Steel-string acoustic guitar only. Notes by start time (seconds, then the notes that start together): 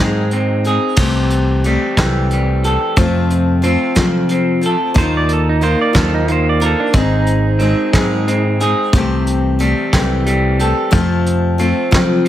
0.00 G#2 D#3 G#3 C4 D#4 G#4
0.66 G#3 C4 D#4 G#4
0.98 C3 E3 A3 C4 G4
1.64 E3 A3 C4 G4
1.99 C3 E3 A3 C4 G4
2.64 A3 C4 G4
2.96 F2 C3 F3 A3 C4 F4
3.62 F3 A3 C4 F4
3.95 F2 C3 F3 A3 C4 F4
4.61 F3 A3 C4 F4
4.94 D#3 A#3 D#4 F4
5.61 D#3 A#3 D#4 F4
5.93 D#3 A#3 D#4 F4
6.60 A#3 D#4 F4
6.94 G#2 D#3 G#3 C4 D#4 G#4
7.60 G#3 C4 D#4 G#4
7.95 G#2 D#3 G#3 C4 D#4 G#4
8.60 G#3 C4 D#4 G#4
8.93 C3 E3 A3 C4 G4
9.59 E3 A3 C4 G4
9.93 C3 E3 A3 C4 G4
10.59 A3 C4 G4
10.91 F2 C3 F3 A3 C4 F4
11.58 F3 A3 C4 F4
11.91 F2 C3 F3 A3 C4 F4